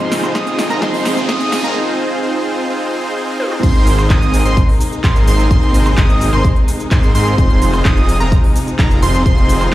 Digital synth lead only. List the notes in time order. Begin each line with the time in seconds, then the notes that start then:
Already playing: C6
0.35 D#6
0.70 A#5
0.82 C6
1.29 D#6
1.64 A#5
3.63 C6
4.10 D#6
4.45 C6
5.04 C6
5.28 C6
5.51 C6
5.98 D#6
6.33 C6
6.92 C6
7.15 C6
7.38 C6
7.85 D#6
8.20 A#5
8.79 A#5
9.02 C6
9.26 C6